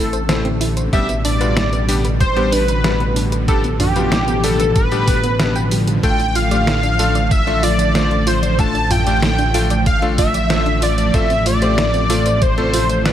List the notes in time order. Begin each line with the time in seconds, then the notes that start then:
Already playing: A1 C3 D3 A3 E4 A4
0.13 C5, closed hi-hat, tambourine
0.29 A3 C4 E4 C5, snare, closed hi-hat, tambourine
0.45 C4, closed hi-hat
0.61 E4, open hi-hat, tambourine
0.77 C5, closed hi-hat, tambourine
0.93 A1 B2 G3 B3 D4 G4 E5, kick, closed hi-hat, tambourine
1.09 B3, closed hi-hat, tambourine
1.25 D4 D5, open hi-hat, tambourine
1.41 G3 B3 D4 F4 B4, closed hi-hat, tambourine
1.57 G3, snare, closed hi-hat, tambourine
1.73 B3, closed hi-hat, tambourine
1.89 G3 B3 D4 G4, open hi-hat, tambourine
2.05 B4, closed hi-hat, tambourine
2.20 G3 C5, kick, closed hi-hat, tambourine
2.36 G3 B3 D4 G4, closed hi-hat
2.52 D4 B4, open hi-hat, tambourine
2.68 B4, closed hi-hat, tambourine
2.84 G3 B3 D4 B4, snare, closed hi-hat, tambourine
3.00 B3, closed hi-hat
3.16 D4, open hi-hat, tambourine
3.32 B4, closed hi-hat, tambourine
3.48 F3 G3 B3 D4 G4 A4, kick, closed hi-hat, tambourine
3.64 B3, closed hi-hat, tambourine
3.80 D4 G4, open hi-hat, mid tom, tambourine
3.96 G3 B3 D4 F4 B4, closed hi-hat, tambourine
4.12 G3, snare, closed hi-hat, tambourine
4.28 B3, closed hi-hat, tambourine
4.44 G3 B3 D4 G4 A4, open hi-hat, tambourine
4.60 B4, closed hi-hat, tambourine
4.76 G3 B4, kick, closed hi-hat, tambourine
4.92 G3 B3 D4 G4, closed hi-hat, tambourine
5.08 G4, kick, open hi-hat, tambourine
5.24 B3, closed hi-hat, tambourine
5.40 G3 B3 D4 B4, snare, closed hi-hat, tambourine
5.56 G5, closed hi-hat, tambourine
5.71 G3, open hi-hat, tambourine
5.88 G3, closed hi-hat, tambourine
6.03 A1 A3 D4 F4 A4 G5, kick, closed hi-hat, tambourine
6.20 D4, closed hi-hat, tambourine
6.35 F4 F5, open hi-hat, tambourine
6.51 A3 D4 F4 G4 D5, closed hi-hat, tambourine
6.67 A3, snare, closed hi-hat, tambourine
6.83 D4, closed hi-hat, tambourine
6.99 A3 D4 F4 A4, open hi-hat, tambourine
7.15 D5, closed hi-hat, tambourine
7.31 A3 E5, kick, closed hi-hat, tambourine
7.47 A3 D4 F4 A4, closed hi-hat
7.63 F4 D5, open hi-hat, tambourine
7.79 D5, closed hi-hat, tambourine
7.95 A3 D4 F4 C5, snare, closed hi-hat, tambourine
8.11 D4, closed hi-hat
8.27 F4 C5, open hi-hat, tambourine
8.43 D5, closed hi-hat, tambourine
8.59 A3 D4 F4 A4 A5, kick, closed hi-hat, tambourine
8.75 D4, closed hi-hat, tambourine
8.91 F4 G5, open hi-hat, mid tom, tambourine
9.06 A3 D4 F4 G4 D5, closed hi-hat, tambourine
9.22 A3, snare, closed hi-hat, tambourine
9.38 D4, closed hi-hat, tambourine
9.54 A3 D4 F4 A4, open hi-hat, tambourine
9.70 D5, closed hi-hat, tambourine
9.86 A3 F5, kick, closed hi-hat, tambourine
10.02 A3 D4 F4 A4, closed hi-hat
10.18 F4 E5, kick, open hi-hat, tambourine
10.34 D5, closed hi-hat, tambourine
10.50 A3 D4 F4 C5, snare, closed hi-hat, tambourine
10.66 D4, closed hi-hat
10.82 F4 D5, open hi-hat, tambourine
10.98 D5, closed hi-hat, tambourine
11.14 A1 C3 A3 C4 F4 A4 E5, kick, closed hi-hat, tambourine
11.30 C4, closed hi-hat, tambourine
11.46 F4 D5, open hi-hat, tambourine
11.62 A3 C4 F4 G4 C5, closed hi-hat, tambourine
11.78 A3, snare, closed hi-hat, tambourine
11.94 C4, closed hi-hat, tambourine
12.10 A3 C4 F4 A4, open hi-hat, tambourine
12.26 C5, closed hi-hat, tambourine
12.42 A3 C5, kick, closed hi-hat, tambourine
12.58 A3 C4 F4 A4, closed hi-hat
12.74 F4, open hi-hat, tambourine
12.90 C5, closed hi-hat, tambourine
13.06 A3 C4 F4 B4 D5, snare, closed hi-hat, tambourine